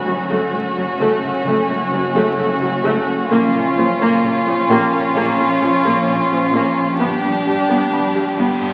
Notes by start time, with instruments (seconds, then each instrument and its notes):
Already playing: synth drone F#1, violin section C#4 F#4, celesta B5
0.06 double bass section F#1, cello section F#2, viola section F#3
0.29 cello section F#2, viola section A3
0.52 double bass section F#1, cello section F#2, viola section A3
0.76 cello section F#2, viola section F#3
0.99 double bass section F#1, cello section F#2, viola section A3
1.22 cello section F#2, viola section A3
1.45 double bass section F#1, cello section F#2, viola section A3
1.68 cello section F#2, viola section A3
1.91 double bass section F#1, cello section F#2, viola section F#3
2.14 cello section F#2, viola section A3
2.37 double bass section F#1, cello section F#2, viola section A3
2.61 cello section F#2, viola section F#3
2.83 double bass section F#1, cello section F#2, viola section A3
3.29 double bass section A#1, synth drone A#1, cello section A#2, viola section A#3, violin section C#4 F4
3.53 cello section A#2, viola section A#3
3.76 double bass section A#1, cello section A#2, viola section F3
3.99 cello section A#2, viola section A#3
4.22 double bass section A#1, cello section A#2, viola section A#3
4.45 cello section A#2, viola section F3
4.68 double bass section A#1, cello section A#2, viola section A#3, celesta G4 G5
4.92 cello section A#2, viola section A#3
5.14 double bass section A#1, cello section A#2, viola section A#3
5.38 cello section A#2, viola section A#3
5.60 double bass section A#1, cello section A#2, viola section F3
5.84 cello section A#2, viola section A#3
6.07 double bass section A#1, cello section A#2, viola section A#3
6.30 cello section A#2, viola section F3
6.52 double bass section A#1, cello section A#2, viola section A#3
6.98 double bass section G1, synth drone G1, cello section G2, viola section B3, violin section D4 G4, reverse cymbal
7.23 cello section G2, viola section B3
7.45 double bass section G1, cello section G2, viola section G3
7.69 cello section G2, viola section B3
7.91 double bass section G1, cello section G2, viola section B3, celesta B5
8.15 cello section G2, viola section G3
8.37 double bass section G1, cello section G2, viola section B3
8.60 cello section G2, viola section B3